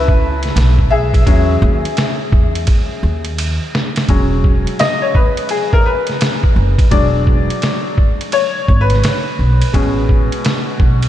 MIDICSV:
0, 0, Header, 1, 4, 480
1, 0, Start_track
1, 0, Key_signature, 4, "major"
1, 0, Tempo, 705882
1, 863, Time_signature, 4, 2, 24, 8
1, 7538, End_track
2, 0, Start_track
2, 0, Title_t, "Upright piano"
2, 0, Program_c, 0, 0
2, 0, Note_on_c, 0, 54, 52
2, 0, Note_on_c, 0, 59, 45
2, 0, Note_on_c, 0, 64, 70
2, 0, Note_on_c, 0, 71, 91
2, 590, Note_off_c, 0, 71, 0
2, 597, Note_off_c, 0, 64, 0
2, 615, Note_on_c, 0, 76, 90
2, 624, Note_on_c, 0, 68, 83
2, 833, Note_off_c, 0, 54, 0
2, 835, Note_off_c, 0, 59, 0
2, 857, Note_on_c, 0, 54, 54
2, 861, Note_on_c, 0, 56, 46
2, 866, Note_on_c, 0, 61, 61
2, 1204, Note_off_c, 0, 54, 0
2, 1206, Note_off_c, 0, 56, 0
2, 1209, Note_off_c, 0, 61, 0
2, 2272, Note_off_c, 0, 76, 0
2, 2276, Note_off_c, 0, 68, 0
2, 2779, Note_on_c, 0, 54, 51
2, 2782, Note_on_c, 0, 56, 50
2, 2787, Note_on_c, 0, 61, 59
2, 3262, Note_on_c, 0, 75, 90
2, 3413, Note_on_c, 0, 73, 81
2, 3420, Note_off_c, 0, 75, 0
2, 3474, Note_off_c, 0, 54, 0
2, 3475, Note_off_c, 0, 56, 0
2, 3478, Note_off_c, 0, 61, 0
2, 3495, Note_off_c, 0, 73, 0
2, 3502, Note_on_c, 0, 71, 76
2, 3726, Note_off_c, 0, 71, 0
2, 3744, Note_on_c, 0, 68, 78
2, 3885, Note_off_c, 0, 68, 0
2, 3897, Note_on_c, 0, 70, 77
2, 3983, Note_on_c, 0, 71, 77
2, 3986, Note_off_c, 0, 70, 0
2, 4206, Note_off_c, 0, 71, 0
2, 4698, Note_on_c, 0, 54, 53
2, 4702, Note_on_c, 0, 74, 93
2, 4703, Note_on_c, 0, 56, 48
2, 4707, Note_on_c, 0, 62, 56
2, 5393, Note_off_c, 0, 54, 0
2, 5396, Note_off_c, 0, 56, 0
2, 5397, Note_off_c, 0, 62, 0
2, 5665, Note_on_c, 0, 73, 97
2, 5691, Note_off_c, 0, 74, 0
2, 5990, Note_on_c, 0, 71, 84
2, 5993, Note_off_c, 0, 73, 0
2, 6618, Note_on_c, 0, 56, 59
2, 6622, Note_on_c, 0, 47, 51
2, 6627, Note_on_c, 0, 61, 62
2, 7159, Note_off_c, 0, 71, 0
2, 7538, Note_off_c, 0, 47, 0
2, 7538, Note_off_c, 0, 56, 0
2, 7538, Note_off_c, 0, 61, 0
2, 7538, End_track
3, 0, Start_track
3, 0, Title_t, "Upright bass"
3, 0, Program_c, 1, 32
3, 0, Note_on_c, 1, 37, 85
3, 355, Note_off_c, 1, 37, 0
3, 380, Note_on_c, 1, 35, 97
3, 601, Note_off_c, 1, 35, 0
3, 623, Note_on_c, 1, 35, 76
3, 843, Note_off_c, 1, 35, 0
3, 862, Note_on_c, 1, 40, 94
3, 1082, Note_off_c, 1, 40, 0
3, 1101, Note_on_c, 1, 39, 108
3, 1242, Note_off_c, 1, 39, 0
3, 1580, Note_on_c, 1, 40, 84
3, 1801, Note_off_c, 1, 40, 0
3, 2060, Note_on_c, 1, 39, 86
3, 2427, Note_off_c, 1, 39, 0
3, 2779, Note_on_c, 1, 28, 81
3, 3146, Note_off_c, 1, 28, 0
3, 4461, Note_on_c, 1, 30, 85
3, 4602, Note_off_c, 1, 30, 0
3, 4703, Note_on_c, 1, 28, 92
3, 5069, Note_off_c, 1, 28, 0
3, 5905, Note_on_c, 1, 32, 87
3, 6124, Note_off_c, 1, 32, 0
3, 6385, Note_on_c, 1, 35, 81
3, 6524, Note_off_c, 1, 35, 0
3, 6623, Note_on_c, 1, 33, 90
3, 6989, Note_off_c, 1, 33, 0
3, 7343, Note_on_c, 1, 35, 77
3, 7538, Note_off_c, 1, 35, 0
3, 7538, End_track
4, 0, Start_track
4, 0, Title_t, "Drums"
4, 57, Note_on_c, 9, 36, 91
4, 125, Note_off_c, 9, 36, 0
4, 291, Note_on_c, 9, 51, 55
4, 309, Note_on_c, 9, 38, 28
4, 359, Note_off_c, 9, 51, 0
4, 377, Note_off_c, 9, 38, 0
4, 385, Note_on_c, 9, 44, 58
4, 385, Note_on_c, 9, 51, 84
4, 393, Note_on_c, 9, 38, 119
4, 453, Note_off_c, 9, 44, 0
4, 453, Note_off_c, 9, 51, 0
4, 461, Note_off_c, 9, 38, 0
4, 535, Note_on_c, 9, 36, 93
4, 603, Note_off_c, 9, 36, 0
4, 774, Note_on_c, 9, 36, 91
4, 778, Note_on_c, 9, 51, 68
4, 842, Note_off_c, 9, 36, 0
4, 846, Note_off_c, 9, 51, 0
4, 861, Note_on_c, 9, 36, 119
4, 863, Note_on_c, 9, 51, 72
4, 929, Note_off_c, 9, 36, 0
4, 931, Note_off_c, 9, 51, 0
4, 1101, Note_on_c, 9, 36, 77
4, 1169, Note_off_c, 9, 36, 0
4, 1260, Note_on_c, 9, 51, 61
4, 1328, Note_off_c, 9, 51, 0
4, 1339, Note_on_c, 9, 44, 51
4, 1339, Note_on_c, 9, 51, 64
4, 1348, Note_on_c, 9, 38, 107
4, 1407, Note_off_c, 9, 44, 0
4, 1407, Note_off_c, 9, 51, 0
4, 1416, Note_off_c, 9, 38, 0
4, 1581, Note_on_c, 9, 36, 94
4, 1649, Note_off_c, 9, 36, 0
4, 1737, Note_on_c, 9, 51, 63
4, 1805, Note_off_c, 9, 51, 0
4, 1815, Note_on_c, 9, 51, 74
4, 1820, Note_on_c, 9, 36, 76
4, 1883, Note_off_c, 9, 51, 0
4, 1888, Note_off_c, 9, 36, 0
4, 2207, Note_on_c, 9, 51, 55
4, 2275, Note_off_c, 9, 51, 0
4, 2302, Note_on_c, 9, 44, 60
4, 2302, Note_on_c, 9, 51, 83
4, 2370, Note_off_c, 9, 44, 0
4, 2370, Note_off_c, 9, 51, 0
4, 2549, Note_on_c, 9, 38, 89
4, 2617, Note_off_c, 9, 38, 0
4, 2693, Note_on_c, 9, 51, 65
4, 2702, Note_on_c, 9, 38, 89
4, 2761, Note_off_c, 9, 51, 0
4, 2770, Note_off_c, 9, 38, 0
4, 2778, Note_on_c, 9, 51, 65
4, 2779, Note_on_c, 9, 36, 111
4, 2846, Note_off_c, 9, 51, 0
4, 2847, Note_off_c, 9, 36, 0
4, 3020, Note_on_c, 9, 36, 80
4, 3088, Note_off_c, 9, 36, 0
4, 3176, Note_on_c, 9, 51, 54
4, 3244, Note_off_c, 9, 51, 0
4, 3260, Note_on_c, 9, 44, 48
4, 3260, Note_on_c, 9, 51, 67
4, 3268, Note_on_c, 9, 38, 97
4, 3328, Note_off_c, 9, 44, 0
4, 3328, Note_off_c, 9, 51, 0
4, 3336, Note_off_c, 9, 38, 0
4, 3501, Note_on_c, 9, 36, 97
4, 3569, Note_off_c, 9, 36, 0
4, 3654, Note_on_c, 9, 51, 62
4, 3722, Note_off_c, 9, 51, 0
4, 3733, Note_on_c, 9, 51, 67
4, 3801, Note_off_c, 9, 51, 0
4, 3896, Note_on_c, 9, 36, 90
4, 3964, Note_off_c, 9, 36, 0
4, 4126, Note_on_c, 9, 51, 56
4, 4144, Note_on_c, 9, 38, 31
4, 4194, Note_off_c, 9, 51, 0
4, 4212, Note_off_c, 9, 38, 0
4, 4221, Note_on_c, 9, 44, 60
4, 4221, Note_on_c, 9, 51, 81
4, 4229, Note_on_c, 9, 38, 110
4, 4289, Note_off_c, 9, 44, 0
4, 4289, Note_off_c, 9, 51, 0
4, 4297, Note_off_c, 9, 38, 0
4, 4375, Note_on_c, 9, 36, 89
4, 4443, Note_off_c, 9, 36, 0
4, 4614, Note_on_c, 9, 36, 96
4, 4617, Note_on_c, 9, 51, 66
4, 4682, Note_off_c, 9, 36, 0
4, 4685, Note_off_c, 9, 51, 0
4, 4702, Note_on_c, 9, 36, 102
4, 4702, Note_on_c, 9, 51, 67
4, 4770, Note_off_c, 9, 36, 0
4, 4770, Note_off_c, 9, 51, 0
4, 4943, Note_on_c, 9, 36, 77
4, 5011, Note_off_c, 9, 36, 0
4, 5103, Note_on_c, 9, 51, 59
4, 5171, Note_off_c, 9, 51, 0
4, 5182, Note_on_c, 9, 44, 46
4, 5182, Note_on_c, 9, 51, 65
4, 5191, Note_on_c, 9, 38, 99
4, 5250, Note_off_c, 9, 44, 0
4, 5250, Note_off_c, 9, 51, 0
4, 5259, Note_off_c, 9, 38, 0
4, 5424, Note_on_c, 9, 36, 89
4, 5492, Note_off_c, 9, 36, 0
4, 5582, Note_on_c, 9, 51, 57
4, 5650, Note_off_c, 9, 51, 0
4, 5659, Note_on_c, 9, 51, 75
4, 5727, Note_off_c, 9, 51, 0
4, 5905, Note_on_c, 9, 36, 89
4, 5973, Note_off_c, 9, 36, 0
4, 6051, Note_on_c, 9, 51, 55
4, 6069, Note_on_c, 9, 38, 34
4, 6119, Note_off_c, 9, 51, 0
4, 6137, Note_off_c, 9, 38, 0
4, 6144, Note_on_c, 9, 44, 58
4, 6144, Note_on_c, 9, 51, 85
4, 6152, Note_on_c, 9, 38, 113
4, 6212, Note_off_c, 9, 44, 0
4, 6212, Note_off_c, 9, 51, 0
4, 6220, Note_off_c, 9, 38, 0
4, 6538, Note_on_c, 9, 51, 69
4, 6606, Note_off_c, 9, 51, 0
4, 6623, Note_on_c, 9, 36, 114
4, 6625, Note_on_c, 9, 51, 73
4, 6691, Note_off_c, 9, 36, 0
4, 6693, Note_off_c, 9, 51, 0
4, 6862, Note_on_c, 9, 36, 80
4, 6930, Note_off_c, 9, 36, 0
4, 7020, Note_on_c, 9, 51, 59
4, 7088, Note_off_c, 9, 51, 0
4, 7103, Note_on_c, 9, 44, 48
4, 7103, Note_on_c, 9, 51, 70
4, 7112, Note_on_c, 9, 38, 108
4, 7171, Note_off_c, 9, 44, 0
4, 7171, Note_off_c, 9, 51, 0
4, 7180, Note_off_c, 9, 38, 0
4, 7342, Note_on_c, 9, 36, 80
4, 7410, Note_off_c, 9, 36, 0
4, 7497, Note_on_c, 9, 51, 66
4, 7538, Note_off_c, 9, 51, 0
4, 7538, End_track
0, 0, End_of_file